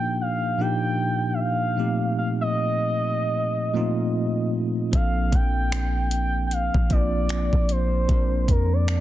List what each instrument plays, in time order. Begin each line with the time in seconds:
Already playing: tine electric piano A#2 F3 A#3 D4 D#4 G4, soft synth lead G5
0.21 soft synth lead F5
0.58 tine electric piano A#2 F3 A#3 D4 D#4 G4, soft synth lead G5
1.34 soft synth lead E5
1.39 soft synth lead F5
1.76 tine electric piano A#2 F3 A3 C4 D#4 G4
2.18 soft synth lead F5
2.41 soft synth lead D#5
3.73 tine electric piano A#2 F3 A3 C4 D#4 F4
4.92 808-style bass A#1, tine electric piano F3 A#3 C4 D4 A4, soft synth lead F5, kick, closed hi-hat
5.32 808-style bass A#1, soft synth lead G5, kick, closed hi-hat
5.72 finger snap, closed hi-hat
6.11 soft synth lead G5, closed hi-hat
6.47 soft synth lead G5
6.51 soft synth lead F5, closed hi-hat
6.74 808-style bass A#1, kick
6.89 tine electric piano F3 A#3 C4 D4 F4, soft synth lead D5, kick, closed hi-hat
7.29 finger snap, closed hi-hat
7.53 808-style bass A#1, kick
7.69 soft synth lead C5, closed hi-hat
8.08 808-style bass A#1, tine electric piano F3 A#3 C4 D4 A#4, kick, closed hi-hat
8.48 808-style bass F2, soft synth lead A#4, kick, closed hi-hat
8.73 soft synth lead D5
8.88 finger snap, closed hi-hat